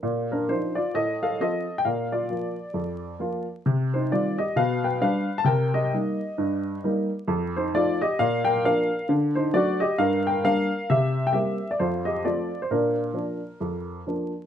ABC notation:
X:1
M:4/4
L:1/16
Q:"Swing" 1/4=133
K:Bb
V:1 name="Upright piano"
z2 [DB]2 [Ec]2 [Fd]2 [Ae]2 [Af]2 [Ae]3 g | [Bf]2 [Fd]12 z2 | z2 [Ec]2 [Fd]2 [Ge]2 [=Bf]2 [Bg]2 [Bf]3 a | [Bg]2 [Ge]12 z2 |
z2 [Ec]2 [Fd]2 [Ge]2 [Bf]2 [Bg]2 [Bf]4 | z2 [Ec]2 [^Fd]2 [Ge]2 [B=f]2 [Bg]2 [Bf]4 | [G=e]3 g [Ge]3 d [Fc]2 [G_e]2 [Fd]3 c | [DB]12 z4 |]
V:2 name="Upright piano" clef=bass
B,,4 [F,DF]4 A,,4 [F,CF]4 | B,,4 [F,B,F]4 F,,4 [F,B,F]4 | C,4 [E,G,C]4 =B,,4 [G,D]4 | C,4 [G,B,E]4 G,,4 [G,B,E]4 |
F,,4 [F,A,E]4 B,,4 [F,B,D]4 | D,4 [^F,A,D]4 G,,4 [G,B,D]4 | C,4 [G,B,C]4 F,,4 [F,A,C]4 | B,,4 [F,B,D]4 F,,4 [F,B,D]4 |]